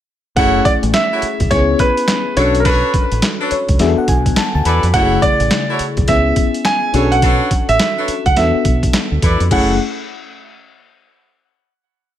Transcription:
0.36 fingered electric bass F#1, fm electric piano A3 C#4 E4 G#4, horn section E4 F#4 A4 C#5, grand piano F#5, kick, closed hi-hat
0.65 grand piano D5, kick, closed hi-hat
0.83 fingered electric bass A1, closed hi-hat
0.94 grand piano E5, snare, clap, closed hi-hat
1.12 horn section E4 F#4 A4 C#5
1.22 muted fingered electric bass stroke, closed hi-hat
1.40 fingered electric bass B1, kick, closed hi-hat
1.51 fingered electric bass C#2, fm electric piano B3 C#4 E4 G#4, grand piano C#5, kick, snare, closed hi-hat
1.79 grand piano B4, kick, closed hi-hat
1.97 closed hi-hat
2.08 snare, clap, closed hi-hat
2.36 fingered electric bass B1, fm electric piano C#4 D4 F#4 A4, horn section D4 A4 B4 C#5, grand piano C#5, closed hi-hat
2.55 closed hi-hat
2.60 grand piano A#4
2.65 horn section D4 A4 B4 C#5, grand piano B4, kick, closed hi-hat
2.94 kick, closed hi-hat
3.12 fingered electric bass A1, closed hi-hat
3.22 snare, clap, closed hi-hat
3.40 horn section D4 A4 B4 C#5
3.51 fm electric piano C#5, muted fingered electric bass stroke, closed hi-hat
3.69 fingered electric bass C#2, kick, closed hi-hat
3.79 fingered electric bass E2, fm electric piano B3 D4 F#4 G#4 E5, snare, closed hi-hat
3.88 fm electric piano A4
3.98 fm electric piano F#5, muted fingered electric bass stroke
4.08 fingered electric bass B1, fm electric piano G#5, kick, closed hi-hat
4.26 kick, closed hi-hat
4.36 fm electric piano A5, snare, clap, closed hi-hat
4.55 fingered electric bass D2, fm electric piano A5
4.65 fingered electric bass E2, horn section E4 A4 B4 D5, fm electric piano B5, closed hi-hat
4.83 fingered electric bass F2, closed hi-hat
4.93 fingered electric bass F#1, fm electric piano C#3 A3 E4 F#4, horn section E4 F#4 A4 C#5, grand piano F#5, kick, closed hi-hat
5.02 fm electric piano G#4
5.22 grand piano D5, kick, closed hi-hat
5.40 fingered electric bass A1, closed hi-hat
5.51 snare, clap, closed hi-hat
5.69 horn section E4 F#4 A4 C#5
5.79 muted fingered electric bass stroke, closed hi-hat
5.97 fingered electric bass B1, kick, closed hi-hat
6.08 fingered electric bass C#2, fm electric piano B3 C#4 E4 G#4, grand piano E5, kick, snare, closed hi-hat
6.36 kick, closed hi-hat
6.54 closed hi-hat
6.65 grand piano G#5, snare, clap, closed hi-hat
6.93 fingered electric bass B1, fm electric piano C#4 D4 F#4 G#4, horn section D4 A4 B4 C#5, closed hi-hat
7.02 fm electric piano A4
7.12 grand piano F#5, closed hi-hat
7.22 horn section D4 A4 B4 C#5, kick, closed hi-hat
7.51 kick, closed hi-hat
7.69 fingered electric bass A1, grand piano E5, closed hi-hat
7.79 snare, clap, closed hi-hat
7.97 horn section D4 A4 B4 C#5
8.08 muted fingered electric bass stroke, closed hi-hat
8.26 fingered electric bass C#2, grand piano F#5, kick, closed hi-hat
8.36 fingered electric bass E2, fm electric piano B3 D4 F#4 A4, grand piano E5, snare, closed hi-hat
8.54 muted fingered electric bass stroke
8.65 fingered electric bass B1, kick, closed hi-hat
8.83 kick, closed hi-hat
8.93 snare, clap, closed hi-hat
9.12 fingered electric bass D2
9.22 fingered electric bass E2, horn section E4 A4 B4 D5, kick, closed hi-hat
9.40 fingered electric bass F2, closed hi-hat
9.51 fingered electric bass F#1, fm electric piano A3 C#4 E4 G#4, horn section E4 F#4 A4 C#5, grand piano F#5, kick, crash

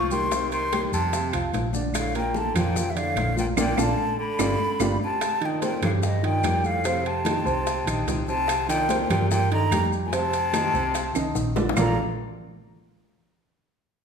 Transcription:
Already playing: fingered electric bass C2
0.11 baritone saxophone D#3, grand piano G3 G4 G5, flute C6, high conga, maracas
0.31 grand piano C3 C4 C5, high bongo, high conga, high timbale, maracas
0.52 baritone saxophone D#3, flute C6, high bongo, high conga, high timbale, maracas
0.72 grand piano G3 G4 G5, high bongo, high conga, high timbale, claves, maracas
0.93 fingered electric bass F2, baritone saxophone C3, flute A5, high bongo, high conga, maracas
1.13 grand piano C3 C4 C5, high bongo, high conga, high timbale, maracas
1.33 fingered electric bass C2, grand piano F3 F4 F5, high bongo, high conga, high timbale, claves, maracas
1.53 fingered electric bass A#1, high bongo, low bongo, high conga, high timbale, maracas
1.73 grand piano D3 D4 D5, high conga, maracas
1.94 baritone saxophone A2, flute F5, high bongo, high conga, high timbale, claves, maracas
2.15 baritone saxophone A#2, grand piano A#3 A#4 A#5, flute G5, high bongo, high conga, high timbale, maracas
2.34 baritone saxophone D3, flute A5, high bongo, high conga, maracas
2.55 fingered electric bass F2, baritone saxophone A#2, grand piano F3 F4 F5, flute G5, high bongo, high conga, low conga, high timbale, claves, maracas
2.76 high bongo, high conga, low conga, maracas
2.90 baritone saxophone G2, flute E5
2.95 baritone saxophone A2, grand piano D3 D4 D5, flute F5, high bongo, high conga, high timbale, maracas
3.16 fingered electric bass A#1, high bongo, low bongo, high conga, high timbale, claves, maracas
3.36 baritone saxophone A#2, grand piano F3 F4 F5, flute G5, high conga, maracas
3.56 fingered electric bass A#1, baritone saxophone A#2, grand piano A#3 D4 F4, flute G5, low bongo, high conga, high timbale, claves, maracas
3.77 fingered electric bass A#1, baritone saxophone D3, grand piano A#3 D4 F4, flute A5, low bongo, high conga, high timbale, claves, maracas
4.19 baritone saxophone D3, flute B5
4.39 fingered electric bass G1, grand piano D4 F4 G4, low bongo, high conga, high timbale, claves, maracas
4.80 fingered electric bass G1, grand piano D4 F4 G4, low bongo, high conga, high timbale, claves, maracas
5.03 baritone saxophone C3, flute A5
5.21 high bongo, high conga, high timbale, claves, maracas
5.41 baritone saxophone A#2, grand piano D#3 D#4 D#5, high bongo, high conga, high timbale
5.45 flute G5
5.61 baritone saxophone A#2, grand piano C4 C5 C6, flute G5, high bongo, high conga, high timbale, maracas
5.82 fingered electric bass G2, baritone saxophone A2, grand piano G3 G4 G5, flute F5, high conga, low conga, high timbale, claves, maracas
6.02 baritone saxophone G2, flute D#5, high bongo, high conga, maracas
6.23 baritone saxophone A#2, grand piano D#3 D#4 D#5, flute G5, high bongo, high conga, high timbale
6.43 fingered electric bass F2, grand piano G3 G4 G5, high bongo, low bongo, high conga, high timbale, claves, maracas
6.64 baritone saxophone A2, flute F5, high bongo, maracas
6.84 grand piano C3 C4 C5, high bongo, high conga, high timbale, maracas
7.05 baritone saxophone C3, flute A5, high bongo, high conga, high timbale
7.25 grand piano D#3 D#4 D#5, high bongo, high conga, high timbale, claves, maracas
7.45 fingered electric bass C2, grand piano C4 C5 C6, high conga, maracas
7.67 high bongo, high conga, high timbale, maracas
7.86 fingered electric bass A#1, grand piano D#3 D#4 D#5, high bongo, high conga, high timbale, claves, maracas
8.07 fingered electric bass C2, high bongo, low bongo, high conga, high timbale, low timbale, maracas
8.28 grand piano C3 C4 C5, baritone saxophone C3, flute A5, high bongo, maracas
8.48 high bongo, high conga, high timbale, claves, maracas
8.68 baritone saxophone A#2, grand piano D#3 D#4 D#5, flute G5, high bongo, high conga, high timbale, maracas
8.89 grand piano C4 C5 C6, high bongo, high conga, high timbale, maracas
9.10 fingered electric bass G2, baritone saxophone A#2, grand piano G3 G4 G5, flute G5, high conga, low conga, high timbale, claves, maracas
9.31 baritone saxophone A#2, flute G5, high bongo, high conga, maracas
9.51 baritone saxophone D3, grand piano D#3 D#4 D#5, flute A#5, high bongo, high conga, high timbale
9.71 fingered electric bass F2, grand piano G3 G4 G5, high bongo, low bongo, high conga, high timbale, claves, maracas
9.93 high bongo, maracas
10.06 baritone saxophone A#2, flute G#5
10.12 grand piano C3 C4 C5, baritone saxophone C3, flute A5, high bongo, high conga, high timbale, maracas
10.33 high bongo, high conga, high timbale, maracas
10.53 grand piano D#3 D#4 D#5, high bongo, high conga, high timbale, claves, maracas
10.74 fingered electric bass C2, grand piano C4 C5 C6, high conga, maracas
10.95 high bongo, high conga, high timbale, maracas
11.15 fingered electric bass C2, grand piano D#3 D#4 D#5, high bongo, high conga, high timbale, claves, maracas
11.35 fingered electric bass A#1, high bongo, low bongo, high conga, maracas
11.56 grand piano D3 D4 D5, high bongo, high conga, low timbale, maracas
11.69 low bongo
11.76 fingered electric bass A#1, baritone saxophone D2, grand piano A#3 F4 A4 A#4 D5 F5, flute A#5, low bongo, low conga, low timbale, claves, maracas

